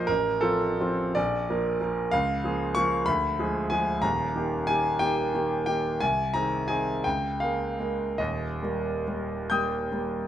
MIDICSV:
0, 0, Header, 1, 2, 480
1, 0, Start_track
1, 0, Tempo, 698487
1, 58, Time_signature, 6, 3, 24, 8
1, 1023, Tempo, 636943
1, 2943, Tempo, 664452
1, 4863, Tempo, 745342
1, 5823, Tempo, 882353
1, 6303, Tempo, 833333
1, 6999, End_track
2, 0, Start_track
2, 0, Title_t, "Grand piano"
2, 0, Program_c, 0, 0
2, 0, Control_c, 0, 64, 127
2, 0, Note_on_c, 0, 34, 57
2, 0, Note_on_c, 0, 53, 45
2, 0, Note_on_c, 0, 58, 49
2, 0, Note_on_c, 0, 65, 51
2, 0, Note_on_c, 0, 72, 100
2, 0, Note_on_c, 0, 74, 96
2, 0, Note_on_c, 0, 75, 105
2, 0, Note_on_c, 0, 77, 92
2, 48, Note_on_c, 0, 70, 99
2, 57, Note_on_c, 0, 33, 59
2, 69, Control_c, 0, 64, 0
2, 70, Note_off_c, 0, 53, 0
2, 71, Note_off_c, 0, 72, 0
2, 71, Note_off_c, 0, 74, 0
2, 72, Note_off_c, 0, 58, 0
2, 73, Note_off_c, 0, 65, 0
2, 73, Note_off_c, 0, 75, 0
2, 74, Note_off_c, 0, 34, 0
2, 76, Note_off_c, 0, 77, 0
2, 184, Control_c, 0, 64, 127
2, 280, Note_on_c, 0, 69, 94
2, 286, Note_off_c, 0, 33, 0
2, 288, Note_off_c, 0, 70, 0
2, 290, Note_on_c, 0, 53, 48
2, 290, Note_on_c, 0, 60, 51
2, 296, Note_on_c, 0, 65, 53
2, 521, Note_off_c, 0, 60, 0
2, 522, Note_off_c, 0, 53, 0
2, 524, Note_off_c, 0, 65, 0
2, 552, Note_on_c, 0, 53, 47
2, 554, Note_on_c, 0, 60, 52
2, 559, Note_on_c, 0, 65, 57
2, 774, Note_off_c, 0, 53, 0
2, 775, Note_off_c, 0, 60, 0
2, 778, Note_off_c, 0, 65, 0
2, 789, Note_on_c, 0, 74, 93
2, 790, Note_off_c, 0, 69, 0
2, 798, Note_on_c, 0, 34, 66
2, 807, Control_c, 0, 64, 0
2, 912, Control_c, 0, 64, 127
2, 1017, Note_off_c, 0, 34, 0
2, 1029, Note_on_c, 0, 58, 53
2, 1030, Note_on_c, 0, 53, 48
2, 1035, Note_on_c, 0, 70, 57
2, 1241, Note_off_c, 0, 58, 0
2, 1242, Note_off_c, 0, 53, 0
2, 1245, Note_off_c, 0, 70, 0
2, 1258, Note_off_c, 0, 74, 0
2, 1262, Note_on_c, 0, 53, 45
2, 1268, Note_on_c, 0, 58, 48
2, 1274, Note_on_c, 0, 70, 52
2, 1480, Note_off_c, 0, 53, 0
2, 1483, Note_off_c, 0, 58, 0
2, 1487, Note_off_c, 0, 70, 0
2, 1495, Note_on_c, 0, 77, 105
2, 1507, Note_on_c, 0, 37, 70
2, 1518, Control_c, 0, 64, 0
2, 1645, Control_c, 0, 64, 127
2, 1738, Note_off_c, 0, 37, 0
2, 1742, Note_on_c, 0, 53, 49
2, 1748, Note_on_c, 0, 58, 44
2, 1750, Note_on_c, 0, 68, 55
2, 1955, Note_off_c, 0, 53, 0
2, 1958, Note_off_c, 0, 58, 0
2, 1959, Note_off_c, 0, 68, 0
2, 1971, Note_on_c, 0, 85, 108
2, 1974, Note_off_c, 0, 77, 0
2, 1980, Note_on_c, 0, 53, 52
2, 1983, Note_on_c, 0, 68, 53
2, 1984, Note_on_c, 0, 58, 51
2, 2194, Note_off_c, 0, 53, 0
2, 2196, Note_off_c, 0, 58, 0
2, 2196, Note_off_c, 0, 68, 0
2, 2205, Note_on_c, 0, 83, 108
2, 2213, Note_off_c, 0, 85, 0
2, 2218, Note_on_c, 0, 38, 66
2, 2231, Control_c, 0, 64, 0
2, 2339, Control_c, 0, 64, 127
2, 2451, Note_off_c, 0, 38, 0
2, 2458, Note_on_c, 0, 53, 52
2, 2464, Note_on_c, 0, 68, 53
2, 2465, Note_on_c, 0, 56, 47
2, 2675, Note_off_c, 0, 53, 0
2, 2678, Note_off_c, 0, 68, 0
2, 2679, Note_off_c, 0, 56, 0
2, 2688, Note_on_c, 0, 80, 92
2, 2693, Note_off_c, 0, 83, 0
2, 2698, Note_on_c, 0, 53, 51
2, 2703, Note_on_c, 0, 56, 51
2, 2703, Note_on_c, 0, 68, 51
2, 2918, Note_off_c, 0, 53, 0
2, 2921, Note_off_c, 0, 56, 0
2, 2921, Note_off_c, 0, 68, 0
2, 2928, Note_on_c, 0, 82, 96
2, 2929, Note_on_c, 0, 27, 59
2, 2937, Note_off_c, 0, 80, 0
2, 2939, Note_on_c, 0, 39, 65
2, 2954, Control_c, 0, 64, 0
2, 3088, Control_c, 0, 64, 127
2, 3165, Note_off_c, 0, 27, 0
2, 3170, Note_off_c, 0, 39, 0
2, 3175, Note_on_c, 0, 51, 49
2, 3177, Note_on_c, 0, 58, 51
2, 3183, Note_on_c, 0, 67, 52
2, 3390, Note_off_c, 0, 51, 0
2, 3391, Note_off_c, 0, 58, 0
2, 3394, Note_off_c, 0, 67, 0
2, 3400, Note_on_c, 0, 80, 104
2, 3407, Note_on_c, 0, 51, 51
2, 3408, Note_off_c, 0, 82, 0
2, 3413, Note_on_c, 0, 58, 49
2, 3413, Note_on_c, 0, 67, 54
2, 3622, Note_off_c, 0, 51, 0
2, 3625, Note_off_c, 0, 58, 0
2, 3625, Note_off_c, 0, 67, 0
2, 3634, Note_on_c, 0, 79, 101
2, 3642, Note_off_c, 0, 80, 0
2, 3642, Note_on_c, 0, 51, 51
2, 3643, Note_on_c, 0, 58, 44
2, 3647, Note_on_c, 0, 67, 55
2, 3858, Note_off_c, 0, 51, 0
2, 3859, Note_off_c, 0, 58, 0
2, 3861, Note_off_c, 0, 67, 0
2, 3890, Note_on_c, 0, 51, 48
2, 3891, Note_on_c, 0, 58, 47
2, 3894, Note_on_c, 0, 67, 51
2, 4106, Note_off_c, 0, 79, 0
2, 4107, Note_off_c, 0, 51, 0
2, 4107, Note_off_c, 0, 58, 0
2, 4109, Note_off_c, 0, 67, 0
2, 4117, Note_on_c, 0, 79, 93
2, 4124, Note_on_c, 0, 51, 47
2, 4129, Note_on_c, 0, 58, 51
2, 4133, Note_on_c, 0, 67, 47
2, 4347, Note_off_c, 0, 51, 0
2, 4349, Note_off_c, 0, 58, 0
2, 4351, Note_off_c, 0, 67, 0
2, 4365, Note_on_c, 0, 80, 103
2, 4368, Note_off_c, 0, 79, 0
2, 4373, Note_on_c, 0, 36, 59
2, 4387, Control_c, 0, 64, 0
2, 4508, Control_c, 0, 64, 127
2, 4604, Note_on_c, 0, 82, 96
2, 4609, Note_off_c, 0, 36, 0
2, 4612, Note_on_c, 0, 51, 45
2, 4613, Note_off_c, 0, 80, 0
2, 4617, Note_on_c, 0, 60, 45
2, 4617, Note_on_c, 0, 68, 46
2, 4837, Note_off_c, 0, 51, 0
2, 4840, Note_off_c, 0, 60, 0
2, 4840, Note_off_c, 0, 68, 0
2, 4851, Note_on_c, 0, 80, 94
2, 4857, Note_on_c, 0, 51, 43
2, 4858, Note_off_c, 0, 82, 0
2, 4861, Note_on_c, 0, 60, 44
2, 4863, Note_on_c, 0, 68, 51
2, 5066, Note_off_c, 0, 51, 0
2, 5068, Note_off_c, 0, 60, 0
2, 5069, Note_off_c, 0, 68, 0
2, 5087, Note_off_c, 0, 80, 0
2, 5087, Note_on_c, 0, 79, 85
2, 5096, Note_on_c, 0, 37, 57
2, 5104, Control_c, 0, 64, 0
2, 5211, Control_c, 0, 64, 127
2, 5319, Note_on_c, 0, 77, 85
2, 5323, Note_off_c, 0, 37, 0
2, 5326, Note_off_c, 0, 79, 0
2, 5332, Note_on_c, 0, 56, 39
2, 5332, Note_on_c, 0, 58, 41
2, 5335, Note_on_c, 0, 70, 46
2, 5548, Note_off_c, 0, 56, 0
2, 5548, Note_off_c, 0, 58, 0
2, 5550, Note_off_c, 0, 70, 0
2, 5569, Note_on_c, 0, 56, 41
2, 5575, Note_on_c, 0, 58, 39
2, 5576, Note_on_c, 0, 70, 45
2, 5797, Note_off_c, 0, 56, 0
2, 5801, Note_off_c, 0, 58, 0
2, 5801, Note_off_c, 0, 70, 0
2, 5819, Note_off_c, 0, 77, 0
2, 5821, Note_on_c, 0, 75, 78
2, 5822, Note_on_c, 0, 27, 50
2, 5829, Note_on_c, 0, 39, 57
2, 5834, Control_c, 0, 64, 0
2, 5956, Control_c, 0, 64, 127
2, 6048, Note_off_c, 0, 27, 0
2, 6051, Note_off_c, 0, 39, 0
2, 6062, Note_on_c, 0, 58, 37
2, 6063, Note_on_c, 0, 55, 39
2, 6067, Note_on_c, 0, 70, 45
2, 6285, Note_off_c, 0, 55, 0
2, 6285, Note_off_c, 0, 58, 0
2, 6287, Note_off_c, 0, 70, 0
2, 6307, Note_on_c, 0, 55, 38
2, 6309, Note_on_c, 0, 58, 38
2, 6310, Note_on_c, 0, 70, 43
2, 6538, Note_off_c, 0, 55, 0
2, 6538, Note_off_c, 0, 58, 0
2, 6539, Note_off_c, 0, 70, 0
2, 6550, Note_on_c, 0, 91, 89
2, 6557, Note_off_c, 0, 75, 0
2, 6558, Note_on_c, 0, 79, 65
2, 6560, Note_on_c, 0, 55, 42
2, 6560, Note_on_c, 0, 58, 41
2, 6560, Note_on_c, 0, 87, 67
2, 6562, Note_on_c, 0, 70, 45
2, 6772, Note_off_c, 0, 55, 0
2, 6772, Note_off_c, 0, 58, 0
2, 6773, Note_off_c, 0, 70, 0
2, 6795, Note_on_c, 0, 55, 41
2, 6796, Note_on_c, 0, 58, 37
2, 6801, Note_on_c, 0, 70, 39
2, 6999, Note_off_c, 0, 55, 0
2, 6999, Note_off_c, 0, 58, 0
2, 6999, Note_off_c, 0, 70, 0
2, 6999, Note_off_c, 0, 79, 0
2, 6999, Note_off_c, 0, 87, 0
2, 6999, Note_off_c, 0, 91, 0
2, 6999, End_track
0, 0, End_of_file